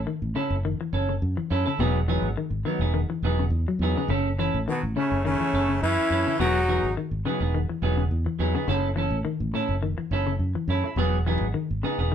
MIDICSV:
0, 0, Header, 1, 9, 480
1, 0, Start_track
1, 0, Tempo, 574163
1, 1501, Time_signature, 4, 2, 24, 8
1, 10157, End_track
2, 0, Start_track
2, 0, Title_t, "Clean electric guitar"
2, 0, Program_c, 0, 27
2, 294, Note_on_c, 0, 61, 65
2, 298, Note_on_c, 0, 64, 73
2, 302, Note_on_c, 0, 69, 77
2, 447, Note_off_c, 0, 61, 0
2, 449, Note_off_c, 0, 64, 0
2, 451, Note_off_c, 0, 69, 0
2, 777, Note_on_c, 0, 61, 71
2, 787, Note_on_c, 0, 69, 76
2, 929, Note_off_c, 0, 61, 0
2, 934, Note_off_c, 0, 69, 0
2, 1258, Note_on_c, 0, 61, 77
2, 1263, Note_on_c, 0, 64, 74
2, 1269, Note_on_c, 0, 69, 80
2, 1375, Note_off_c, 0, 69, 0
2, 1385, Note_off_c, 0, 64, 0
2, 1385, Note_on_c, 0, 69, 66
2, 1388, Note_off_c, 0, 61, 0
2, 1395, Note_on_c, 0, 64, 47
2, 1500, Note_off_c, 0, 69, 0
2, 1500, Note_on_c, 0, 54, 82
2, 1503, Note_off_c, 0, 64, 0
2, 1504, Note_on_c, 0, 59, 88
2, 1506, Note_on_c, 0, 63, 89
2, 1506, Note_on_c, 0, 68, 97
2, 1651, Note_off_c, 0, 54, 0
2, 1653, Note_off_c, 0, 59, 0
2, 1654, Note_off_c, 0, 63, 0
2, 1655, Note_off_c, 0, 68, 0
2, 1738, Note_on_c, 0, 54, 72
2, 1744, Note_on_c, 0, 59, 76
2, 1746, Note_on_c, 0, 63, 76
2, 1751, Note_on_c, 0, 68, 83
2, 1891, Note_off_c, 0, 54, 0
2, 1893, Note_off_c, 0, 59, 0
2, 1894, Note_off_c, 0, 63, 0
2, 1897, Note_off_c, 0, 68, 0
2, 2221, Note_on_c, 0, 54, 70
2, 2224, Note_on_c, 0, 59, 75
2, 2229, Note_on_c, 0, 63, 70
2, 2343, Note_off_c, 0, 63, 0
2, 2346, Note_off_c, 0, 59, 0
2, 2349, Note_on_c, 0, 68, 56
2, 2350, Note_off_c, 0, 54, 0
2, 2353, Note_on_c, 0, 63, 55
2, 2356, Note_on_c, 0, 59, 47
2, 2488, Note_off_c, 0, 68, 0
2, 2490, Note_off_c, 0, 63, 0
2, 2492, Note_off_c, 0, 59, 0
2, 2704, Note_on_c, 0, 54, 66
2, 2709, Note_on_c, 0, 59, 73
2, 2713, Note_on_c, 0, 63, 71
2, 2716, Note_on_c, 0, 68, 71
2, 2854, Note_off_c, 0, 54, 0
2, 2857, Note_off_c, 0, 59, 0
2, 2859, Note_off_c, 0, 63, 0
2, 2860, Note_off_c, 0, 68, 0
2, 3190, Note_on_c, 0, 54, 74
2, 3193, Note_on_c, 0, 59, 72
2, 3197, Note_on_c, 0, 63, 74
2, 3200, Note_on_c, 0, 68, 79
2, 3301, Note_off_c, 0, 68, 0
2, 3309, Note_off_c, 0, 63, 0
2, 3311, Note_on_c, 0, 68, 58
2, 3313, Note_off_c, 0, 59, 0
2, 3315, Note_off_c, 0, 54, 0
2, 3319, Note_on_c, 0, 63, 50
2, 3323, Note_on_c, 0, 59, 47
2, 3420, Note_off_c, 0, 59, 0
2, 3423, Note_off_c, 0, 63, 0
2, 3423, Note_on_c, 0, 61, 93
2, 3424, Note_off_c, 0, 68, 0
2, 3429, Note_on_c, 0, 69, 87
2, 3574, Note_off_c, 0, 61, 0
2, 3577, Note_off_c, 0, 69, 0
2, 3665, Note_on_c, 0, 61, 71
2, 3672, Note_on_c, 0, 64, 70
2, 3676, Note_on_c, 0, 69, 79
2, 3816, Note_off_c, 0, 61, 0
2, 3819, Note_off_c, 0, 64, 0
2, 3821, Note_off_c, 0, 69, 0
2, 4146, Note_on_c, 0, 61, 57
2, 4154, Note_on_c, 0, 64, 59
2, 4296, Note_off_c, 0, 61, 0
2, 4300, Note_off_c, 0, 64, 0
2, 4628, Note_on_c, 0, 61, 61
2, 4637, Note_on_c, 0, 69, 69
2, 4777, Note_off_c, 0, 61, 0
2, 4782, Note_off_c, 0, 69, 0
2, 5110, Note_on_c, 0, 61, 63
2, 5115, Note_on_c, 0, 64, 64
2, 5119, Note_on_c, 0, 69, 65
2, 5225, Note_off_c, 0, 69, 0
2, 5234, Note_off_c, 0, 64, 0
2, 5235, Note_on_c, 0, 69, 50
2, 5236, Note_off_c, 0, 61, 0
2, 5244, Note_on_c, 0, 64, 42
2, 5343, Note_on_c, 0, 54, 72
2, 5344, Note_off_c, 0, 64, 0
2, 5347, Note_off_c, 0, 69, 0
2, 5348, Note_on_c, 0, 59, 87
2, 5348, Note_on_c, 0, 63, 91
2, 5353, Note_on_c, 0, 68, 86
2, 5495, Note_off_c, 0, 54, 0
2, 5497, Note_off_c, 0, 59, 0
2, 5497, Note_off_c, 0, 63, 0
2, 5500, Note_off_c, 0, 68, 0
2, 5587, Note_on_c, 0, 54, 65
2, 5589, Note_on_c, 0, 59, 68
2, 5592, Note_on_c, 0, 63, 70
2, 5597, Note_on_c, 0, 68, 78
2, 5737, Note_off_c, 0, 54, 0
2, 5738, Note_off_c, 0, 59, 0
2, 5739, Note_off_c, 0, 63, 0
2, 5742, Note_off_c, 0, 68, 0
2, 6063, Note_on_c, 0, 54, 66
2, 6066, Note_on_c, 0, 59, 76
2, 6071, Note_on_c, 0, 63, 71
2, 6074, Note_on_c, 0, 68, 79
2, 6181, Note_off_c, 0, 68, 0
2, 6184, Note_off_c, 0, 63, 0
2, 6188, Note_off_c, 0, 59, 0
2, 6191, Note_on_c, 0, 68, 52
2, 6192, Note_off_c, 0, 54, 0
2, 6194, Note_on_c, 0, 63, 51
2, 6199, Note_on_c, 0, 59, 49
2, 6330, Note_off_c, 0, 68, 0
2, 6332, Note_off_c, 0, 63, 0
2, 6334, Note_off_c, 0, 59, 0
2, 6538, Note_on_c, 0, 54, 65
2, 6543, Note_on_c, 0, 59, 75
2, 6546, Note_on_c, 0, 63, 74
2, 6548, Note_on_c, 0, 68, 80
2, 6692, Note_off_c, 0, 54, 0
2, 6694, Note_off_c, 0, 59, 0
2, 6696, Note_off_c, 0, 63, 0
2, 6697, Note_off_c, 0, 68, 0
2, 7013, Note_on_c, 0, 54, 78
2, 7018, Note_on_c, 0, 59, 76
2, 7024, Note_on_c, 0, 63, 76
2, 7025, Note_on_c, 0, 68, 84
2, 7136, Note_off_c, 0, 68, 0
2, 7141, Note_off_c, 0, 63, 0
2, 7146, Note_off_c, 0, 59, 0
2, 7146, Note_on_c, 0, 68, 59
2, 7147, Note_off_c, 0, 54, 0
2, 7151, Note_on_c, 0, 63, 52
2, 7156, Note_on_c, 0, 59, 54
2, 7255, Note_off_c, 0, 59, 0
2, 7258, Note_on_c, 0, 61, 83
2, 7260, Note_off_c, 0, 63, 0
2, 7261, Note_off_c, 0, 68, 0
2, 7263, Note_on_c, 0, 64, 89
2, 7267, Note_on_c, 0, 69, 101
2, 7412, Note_off_c, 0, 61, 0
2, 7414, Note_off_c, 0, 64, 0
2, 7416, Note_off_c, 0, 69, 0
2, 7499, Note_on_c, 0, 61, 73
2, 7510, Note_on_c, 0, 69, 75
2, 7652, Note_off_c, 0, 61, 0
2, 7657, Note_off_c, 0, 69, 0
2, 7976, Note_on_c, 0, 61, 67
2, 7982, Note_on_c, 0, 64, 76
2, 7986, Note_on_c, 0, 69, 76
2, 8130, Note_off_c, 0, 61, 0
2, 8133, Note_off_c, 0, 64, 0
2, 8135, Note_off_c, 0, 69, 0
2, 8457, Note_on_c, 0, 61, 67
2, 8464, Note_on_c, 0, 64, 71
2, 8469, Note_on_c, 0, 69, 78
2, 8609, Note_off_c, 0, 61, 0
2, 8613, Note_off_c, 0, 64, 0
2, 8616, Note_off_c, 0, 69, 0
2, 8937, Note_on_c, 0, 61, 69
2, 8945, Note_on_c, 0, 64, 80
2, 8948, Note_on_c, 0, 69, 81
2, 9065, Note_off_c, 0, 64, 0
2, 9066, Note_off_c, 0, 61, 0
2, 9072, Note_off_c, 0, 69, 0
2, 9075, Note_on_c, 0, 64, 48
2, 9178, Note_on_c, 0, 54, 89
2, 9179, Note_off_c, 0, 64, 0
2, 9179, Note_on_c, 0, 59, 95
2, 9183, Note_on_c, 0, 68, 96
2, 9329, Note_off_c, 0, 54, 0
2, 9329, Note_off_c, 0, 59, 0
2, 9331, Note_off_c, 0, 68, 0
2, 9416, Note_on_c, 0, 54, 74
2, 9421, Note_on_c, 0, 59, 69
2, 9424, Note_on_c, 0, 63, 73
2, 9427, Note_on_c, 0, 68, 80
2, 9568, Note_off_c, 0, 54, 0
2, 9570, Note_off_c, 0, 59, 0
2, 9571, Note_off_c, 0, 63, 0
2, 9573, Note_off_c, 0, 68, 0
2, 9895, Note_on_c, 0, 59, 64
2, 9900, Note_on_c, 0, 63, 79
2, 9902, Note_on_c, 0, 68, 78
2, 10013, Note_off_c, 0, 68, 0
2, 10017, Note_off_c, 0, 63, 0
2, 10023, Note_on_c, 0, 68, 62
2, 10024, Note_off_c, 0, 59, 0
2, 10027, Note_on_c, 0, 63, 50
2, 10032, Note_on_c, 0, 59, 47
2, 10157, Note_off_c, 0, 59, 0
2, 10157, Note_off_c, 0, 63, 0
2, 10157, Note_off_c, 0, 68, 0
2, 10157, End_track
3, 0, Start_track
3, 0, Title_t, "Trombone"
3, 0, Program_c, 1, 57
3, 3919, Note_on_c, 1, 59, 81
3, 4024, Note_off_c, 1, 59, 0
3, 4155, Note_on_c, 1, 61, 83
3, 4374, Note_off_c, 1, 61, 0
3, 4389, Note_on_c, 1, 61, 90
3, 4834, Note_off_c, 1, 61, 0
3, 4869, Note_on_c, 1, 64, 103
3, 5314, Note_off_c, 1, 64, 0
3, 5347, Note_on_c, 1, 66, 108
3, 5793, Note_off_c, 1, 66, 0
3, 10157, End_track
4, 0, Start_track
4, 0, Title_t, "Trumpet"
4, 0, Program_c, 2, 56
4, 3932, Note_on_c, 2, 54, 70
4, 4034, Note_off_c, 2, 54, 0
4, 4161, Note_on_c, 2, 57, 68
4, 4377, Note_off_c, 2, 57, 0
4, 4414, Note_on_c, 2, 57, 84
4, 4848, Note_off_c, 2, 57, 0
4, 4879, Note_on_c, 2, 61, 88
4, 5319, Note_off_c, 2, 61, 0
4, 5368, Note_on_c, 2, 63, 88
4, 5804, Note_off_c, 2, 63, 0
4, 10157, End_track
5, 0, Start_track
5, 0, Title_t, "Clean electric guitar"
5, 0, Program_c, 3, 27
5, 57, Note_on_c, 3, 51, 85
5, 239, Note_off_c, 3, 51, 0
5, 300, Note_on_c, 3, 49, 82
5, 481, Note_off_c, 3, 49, 0
5, 543, Note_on_c, 3, 51, 91
5, 638, Note_off_c, 3, 51, 0
5, 674, Note_on_c, 3, 52, 74
5, 853, Note_off_c, 3, 52, 0
5, 912, Note_on_c, 3, 49, 71
5, 1092, Note_off_c, 3, 49, 0
5, 1147, Note_on_c, 3, 52, 76
5, 1329, Note_off_c, 3, 52, 0
5, 1398, Note_on_c, 3, 49, 77
5, 1479, Note_off_c, 3, 49, 0
5, 1504, Note_on_c, 3, 47, 98
5, 1684, Note_off_c, 3, 47, 0
5, 1741, Note_on_c, 3, 52, 76
5, 1922, Note_off_c, 3, 52, 0
5, 1985, Note_on_c, 3, 51, 85
5, 2165, Note_off_c, 3, 51, 0
5, 2217, Note_on_c, 3, 51, 78
5, 2400, Note_off_c, 3, 51, 0
5, 2457, Note_on_c, 3, 51, 90
5, 2556, Note_off_c, 3, 51, 0
5, 2589, Note_on_c, 3, 52, 71
5, 2771, Note_off_c, 3, 52, 0
5, 2837, Note_on_c, 3, 49, 72
5, 3016, Note_off_c, 3, 49, 0
5, 3077, Note_on_c, 3, 54, 71
5, 3256, Note_off_c, 3, 54, 0
5, 3321, Note_on_c, 3, 49, 76
5, 3403, Note_off_c, 3, 49, 0
5, 3428, Note_on_c, 3, 49, 94
5, 3608, Note_off_c, 3, 49, 0
5, 3671, Note_on_c, 3, 52, 79
5, 3850, Note_off_c, 3, 52, 0
5, 3910, Note_on_c, 3, 51, 89
5, 4089, Note_off_c, 3, 51, 0
5, 4151, Note_on_c, 3, 49, 79
5, 4330, Note_off_c, 3, 49, 0
5, 4389, Note_on_c, 3, 51, 87
5, 4484, Note_off_c, 3, 51, 0
5, 4518, Note_on_c, 3, 52, 71
5, 4697, Note_off_c, 3, 52, 0
5, 4755, Note_on_c, 3, 49, 70
5, 4935, Note_off_c, 3, 49, 0
5, 5241, Note_on_c, 3, 49, 73
5, 5322, Note_off_c, 3, 49, 0
5, 5346, Note_on_c, 3, 47, 96
5, 5527, Note_off_c, 3, 47, 0
5, 5593, Note_on_c, 3, 52, 82
5, 5771, Note_off_c, 3, 52, 0
5, 5830, Note_on_c, 3, 51, 90
5, 6009, Note_off_c, 3, 51, 0
5, 6065, Note_on_c, 3, 49, 83
5, 6246, Note_off_c, 3, 49, 0
5, 6307, Note_on_c, 3, 51, 93
5, 6403, Note_off_c, 3, 51, 0
5, 6433, Note_on_c, 3, 52, 72
5, 6613, Note_off_c, 3, 52, 0
5, 6667, Note_on_c, 3, 49, 75
5, 6850, Note_off_c, 3, 49, 0
5, 6907, Note_on_c, 3, 52, 73
5, 7090, Note_off_c, 3, 52, 0
5, 7146, Note_on_c, 3, 49, 74
5, 7233, Note_off_c, 3, 49, 0
5, 7254, Note_on_c, 3, 49, 89
5, 7438, Note_off_c, 3, 49, 0
5, 7489, Note_on_c, 3, 52, 83
5, 7675, Note_off_c, 3, 52, 0
5, 7730, Note_on_c, 3, 51, 89
5, 7915, Note_off_c, 3, 51, 0
5, 7973, Note_on_c, 3, 45, 81
5, 8157, Note_off_c, 3, 45, 0
5, 8214, Note_on_c, 3, 51, 91
5, 8313, Note_off_c, 3, 51, 0
5, 8341, Note_on_c, 3, 52, 74
5, 8524, Note_off_c, 3, 52, 0
5, 8583, Note_on_c, 3, 49, 78
5, 8766, Note_off_c, 3, 49, 0
5, 8822, Note_on_c, 3, 52, 74
5, 9005, Note_off_c, 3, 52, 0
5, 9174, Note_on_c, 3, 47, 99
5, 9356, Note_off_c, 3, 47, 0
5, 9418, Note_on_c, 3, 52, 80
5, 9598, Note_off_c, 3, 52, 0
5, 9648, Note_on_c, 3, 51, 87
5, 9832, Note_off_c, 3, 51, 0
5, 9892, Note_on_c, 3, 49, 79
5, 10074, Note_off_c, 3, 49, 0
5, 10130, Note_on_c, 3, 51, 86
5, 10157, Note_off_c, 3, 51, 0
5, 10157, End_track
6, 0, Start_track
6, 0, Title_t, "Baritone saxophone"
6, 0, Program_c, 4, 67
6, 3920, Note_on_c, 4, 47, 67
6, 4025, Note_off_c, 4, 47, 0
6, 4165, Note_on_c, 4, 49, 73
6, 4379, Note_off_c, 4, 49, 0
6, 4392, Note_on_c, 4, 49, 84
6, 4836, Note_off_c, 4, 49, 0
6, 4873, Note_on_c, 4, 52, 89
6, 5316, Note_off_c, 4, 52, 0
6, 5353, Note_on_c, 4, 54, 89
6, 5796, Note_off_c, 4, 54, 0
6, 10157, End_track
7, 0, Start_track
7, 0, Title_t, "Fingered electric bass"
7, 0, Program_c, 5, 33
7, 183, Note_on_c, 5, 33, 86
7, 286, Note_off_c, 5, 33, 0
7, 421, Note_on_c, 5, 30, 92
7, 639, Note_off_c, 5, 30, 0
7, 775, Note_on_c, 5, 30, 95
7, 993, Note_off_c, 5, 30, 0
7, 1021, Note_on_c, 5, 42, 98
7, 1135, Note_off_c, 5, 42, 0
7, 1259, Note_on_c, 5, 42, 94
7, 1374, Note_off_c, 5, 42, 0
7, 1495, Note_on_c, 5, 28, 105
7, 1828, Note_off_c, 5, 28, 0
7, 1857, Note_on_c, 5, 32, 91
7, 1963, Note_off_c, 5, 32, 0
7, 2093, Note_on_c, 5, 32, 85
7, 2202, Note_off_c, 5, 32, 0
7, 2335, Note_on_c, 5, 28, 89
7, 2557, Note_off_c, 5, 28, 0
7, 2696, Note_on_c, 5, 28, 90
7, 2914, Note_off_c, 5, 28, 0
7, 2929, Note_on_c, 5, 40, 90
7, 3050, Note_off_c, 5, 40, 0
7, 3170, Note_on_c, 5, 40, 88
7, 3291, Note_off_c, 5, 40, 0
7, 3414, Note_on_c, 5, 30, 108
7, 3748, Note_off_c, 5, 30, 0
7, 3797, Note_on_c, 5, 33, 93
7, 3896, Note_off_c, 5, 33, 0
7, 4039, Note_on_c, 5, 33, 83
7, 4137, Note_off_c, 5, 33, 0
7, 4276, Note_on_c, 5, 30, 88
7, 4490, Note_off_c, 5, 30, 0
7, 4626, Note_on_c, 5, 30, 88
7, 4841, Note_off_c, 5, 30, 0
7, 4869, Note_on_c, 5, 42, 85
7, 4982, Note_off_c, 5, 42, 0
7, 5103, Note_on_c, 5, 42, 85
7, 5219, Note_off_c, 5, 42, 0
7, 5347, Note_on_c, 5, 28, 102
7, 5676, Note_off_c, 5, 28, 0
7, 5711, Note_on_c, 5, 32, 92
7, 5813, Note_off_c, 5, 32, 0
7, 5947, Note_on_c, 5, 32, 83
7, 6050, Note_off_c, 5, 32, 0
7, 6190, Note_on_c, 5, 28, 92
7, 6406, Note_off_c, 5, 28, 0
7, 6538, Note_on_c, 5, 28, 93
7, 6756, Note_off_c, 5, 28, 0
7, 6780, Note_on_c, 5, 40, 93
7, 6896, Note_off_c, 5, 40, 0
7, 7017, Note_on_c, 5, 40, 86
7, 7135, Note_off_c, 5, 40, 0
7, 7254, Note_on_c, 5, 30, 108
7, 7587, Note_off_c, 5, 30, 0
7, 7611, Note_on_c, 5, 33, 94
7, 7721, Note_off_c, 5, 33, 0
7, 7861, Note_on_c, 5, 33, 88
7, 7966, Note_off_c, 5, 33, 0
7, 8097, Note_on_c, 5, 30, 90
7, 8318, Note_off_c, 5, 30, 0
7, 8451, Note_on_c, 5, 30, 90
7, 8670, Note_off_c, 5, 30, 0
7, 8688, Note_on_c, 5, 42, 90
7, 8808, Note_off_c, 5, 42, 0
7, 8925, Note_on_c, 5, 42, 91
7, 9046, Note_off_c, 5, 42, 0
7, 9163, Note_on_c, 5, 28, 100
7, 9499, Note_off_c, 5, 28, 0
7, 9540, Note_on_c, 5, 32, 88
7, 9643, Note_off_c, 5, 32, 0
7, 9786, Note_on_c, 5, 32, 86
7, 9886, Note_off_c, 5, 32, 0
7, 10019, Note_on_c, 5, 28, 90
7, 10157, Note_off_c, 5, 28, 0
7, 10157, End_track
8, 0, Start_track
8, 0, Title_t, "Muted clean electric guitar strokes"
8, 3426, Note_on_c, 9, 29, 87
8, 3510, Note_off_c, 9, 29, 0
8, 7503, Note_on_c, 9, 29, 73
8, 7587, Note_off_c, 9, 29, 0
8, 9063, Note_on_c, 9, 29, 75
8, 9146, Note_off_c, 9, 29, 0
8, 9182, Note_on_c, 9, 29, 83
8, 9266, Note_off_c, 9, 29, 0
8, 9893, Note_on_c, 9, 29, 65
8, 9977, Note_off_c, 9, 29, 0
8, 10157, End_track
9, 0, Start_track
9, 0, Title_t, "Muted fingered electric bass strokes"
9, 656, Note_on_c, 9, 29, 38
9, 740, Note_off_c, 9, 29, 0
9, 1156, Note_on_c, 9, 29, 42
9, 1239, Note_off_c, 9, 29, 0
9, 2583, Note_on_c, 9, 29, 38
9, 2666, Note_off_c, 9, 29, 0
9, 3065, Note_on_c, 9, 29, 39
9, 3149, Note_off_c, 9, 29, 0
9, 4515, Note_on_c, 9, 29, 38
9, 4598, Note_off_c, 9, 29, 0
9, 4999, Note_on_c, 9, 29, 40
9, 5083, Note_off_c, 9, 29, 0
9, 6434, Note_on_c, 9, 29, 40
9, 6518, Note_off_c, 9, 29, 0
9, 6902, Note_on_c, 9, 29, 41
9, 6985, Note_off_c, 9, 29, 0
9, 8347, Note_on_c, 9, 29, 37
9, 8430, Note_off_c, 9, 29, 0
9, 8817, Note_on_c, 9, 29, 41
9, 8901, Note_off_c, 9, 29, 0
9, 10157, End_track
0, 0, End_of_file